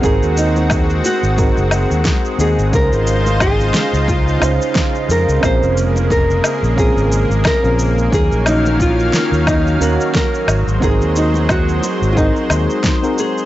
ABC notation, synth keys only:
X:1
M:4/4
L:1/16
Q:"Swing 16ths" 1/4=89
K:Abmix
V:1 name="Synth keys"
[CEGAB]8 [CEGAB]2 z4 [CEGAe]2 | [DEFAc]8- [DEFAc]2 [DEFAc]6 | [CDFAB]8 [CDFAB]2 z3 [CDFAB]3 | [G,DEFB]8- [G,DEFB]2 [DEGBf]4 z2 |
[CEGAB]8 [CEGAB]2 z3 [CEGAB]3 |]